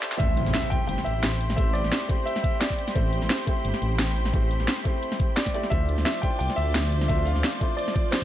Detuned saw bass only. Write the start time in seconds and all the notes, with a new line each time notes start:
0.20 A1
0.46 A1
0.89 G1
1.06 A1
1.58 A1
1.84 A1
2.96 A1
3.22 A1
3.65 G1
3.82 A1
4.34 A1
4.60 A1
5.72 D2
5.98 D2
6.40 C2
6.58 D2
7.09 D2
7.36 D2